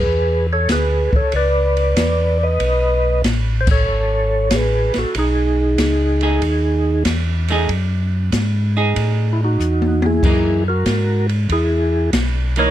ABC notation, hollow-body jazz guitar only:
X:1
M:4/4
L:1/8
Q:"Swing" 1/4=94
K:Bmix
V:1 name="Hollow-body jazz guitar"
z8 | z8 | z3 [A,DG] z3 [A,DG] | z3 [DG]3 z2 |
[E,^A,D] z6 [E,A,D] |]